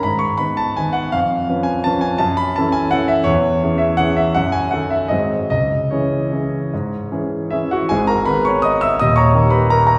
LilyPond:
<<
  \new Staff \with { instrumentName = "Grand piano" } { \time 3/4 \key cis \minor \tempo 4 = 165 b''8 cis'''8 b''8 a''8 gis''8 fis''8 | eis''4. gis''8 a''8 gis''8 | a''8 b''8 a''8 gis''8 fis''8 e''8 | cis''4. e''8 fis''8 e''8 |
fis''8 gis''8 fis''8 e''8 dis''4 | dis''4 cis''2~ | cis''2 <e' e''>8 <fis' fis''>8 | \key gis \minor <gis' gis''>8 <ais' ais''>8 <b' b''>8 <cis'' cis'''>8 <dis'' dis'''>8 <e'' e'''>8 |
<dis'' dis'''>8 <cis'' ais'' cis'''>4 <b' b''>8 <ais' ais''>8 <ais' ais''>8 | }
  \new Staff \with { instrumentName = "Grand piano" } { \time 3/4 \key cis \minor gis,4 <dis b b'>4 <dis b b'>4 | eis,4 <eis cis' b'>4 <eis cis' b'>4 | fis,4 <e cis' a'>4 <e cis' a'>4 | e,4 <e cis' gis'>4 <e cis' gis'>4 |
fis,4 <dis dis' a'>4 <gis, fis bis gis'>4 | cis,4 <e cis' gis'>4 <e cis' gis'>4 | gis,4 <e cis' gis'>4 <e cis' gis'>4 | \key gis \minor <gis,, gis,>4 <dis b gis'>2 |
<dis,, dis,>4 <dis ais g'>2 | }
>>